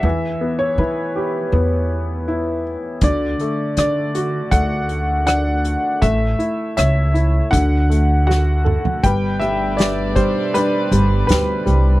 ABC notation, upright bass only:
X:1
M:4/4
L:1/8
Q:1/4=80
K:D
V:1 name="Upright bass" clef=bass
E,, z E,2 E,,4 | D,, z D,2 D,,4 | A,,, z C,,2 D,,4 | [K:G] G,,,4 z G,,, D,, C,, |]